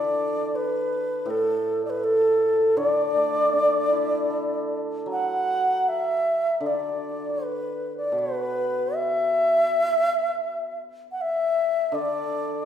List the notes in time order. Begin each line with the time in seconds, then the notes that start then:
Already playing: D3 E3 D5
0.56 B4
1.26 A2
1.30 A4
1.85 D5
1.90 B4
2.04 A4
2.77 D3 D5
3.16 A3
3.53 D4
3.92 E4
4.30 A4
5.06 F#3
5.11 F#5
5.89 E5
6.60 D3
6.66 D5
7.44 B4
7.97 D5
8.12 B2
8.19 B4
8.95 E5
11.12 F#5
11.21 E5
11.92 D3 D5